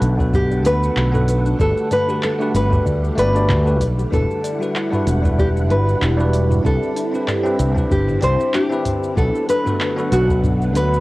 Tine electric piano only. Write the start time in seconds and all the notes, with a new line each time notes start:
Already playing: B3 D4 F#4 A4 B4
0.17 B3 D4 F#4 A4 B4
0.63 B3 D4 F#4 A4 B4
1.12 B3 D4 F#4 A4 B4
1.58 A3 D4 F#4 G4 B4
2.07 A3 D4 F#4 G4 B4
2.38 A3 D4 F#4 G4 B4
2.70 A3 D4 F#4 G4 B4
3.15 A3 D4 F#4 G4 D5
3.33 A3 D4 F#4 G4 D5
3.64 A3 D4 F#4 G4 B4
4.10 G3 D4 E4 F#4 B4
4.59 G3 D4 E4 F#4 B4
4.91 G3 D4 E4 F#4 B4
5.22 G3 D4 E4 F#4 B4
5.68 G3 D4 E4 F#4 B4
6.17 G3 D4 E4 F#4 B4
6.63 C4 D4 E4 G4 B4
7.12 C4 D4 E4 G4 B4
7.43 C4 D4 E4 G4 B4
7.75 C4 D4 E4 G4 B4
8.21 C4 D4 E4 G4 C5
8.70 C4 D4 E4 G4 B4
9.16 B3 D4 F#4 A4 B4
9.64 B3 D4 F#4 A4 B4
9.96 B3 D4 F#4 A4 B4
10.28 B3 D4 F#4 A4 B4
10.73 B3 D4 F#4 A4 B4